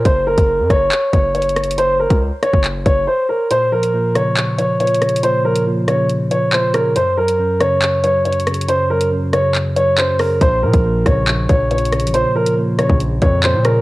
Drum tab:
HH |x--------x--------x-----x-----x-----x-x-x-x-x-x-|x--------x--------x-----x-----x-----------------|x--------x--------x-----x-----x-----x-x-x-x-x-x-|x--------x--------x-----x-----x-----------x-----|
CP |------------------------x-----------------------|------------------------x-----------------------|------------------------x-----------------------|------------------------------------x-----------|
SD |------------------r-----------------------r-----|------------------r-----------------------------|------------------r-----------------------r-----|------------------r-----------------------r-----|
BD |o--------o--------o-----------o-----------------|---------o-----------o--------o-----------------|------------------------------------------------|------------------------------------------------|

HH |x--------x--------x-----x-----x-----x-x-x-x-x-x-|x--------x--------x-----x-----x-----------o-----|x--------x--------x-----x-----x-----x-x-x-x-x-x-|x--------x--------x-----x-----x-----------x-----|
CP |------------------------x-----------------------|------------------------x-----------x-----------|------------------------x-----------------------|------------------------------------x-----------|
SD |------------------r-----------------------r-----|------------------r-----------------------r-----|------------------r-----------------------r-----|------------------r-----------------------r-----|
BD |------------------------------------------------|------------------------------------------------|o--------o--------o-----------o-----------------|---------------------o--------o-----------------|